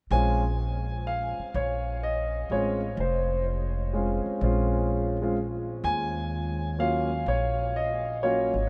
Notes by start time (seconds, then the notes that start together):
0.11 A#1 G#3 C4 C#4 F4 G#5
1.07 F5
1.39 muted upright bass stroke
1.54 A#1 C#5
2.03 D#5
2.50 A1 G#3 C4 C#4 F4 C#5
2.97 F1 C5
3.93 G#3 C4 C#4 F4
4.26 muted upright bass stroke
4.41 A#1 G#3 C4 C#4 F4
5.22 G#3 C4 C#4 F4
5.84 D#2 G#5
6.78 F#3 A#3 C#4 F4 F5
7.26 A#1 C#5
7.76 D#5
8.23 F#3 A#3 C#4 F4 C#5
8.54 G#1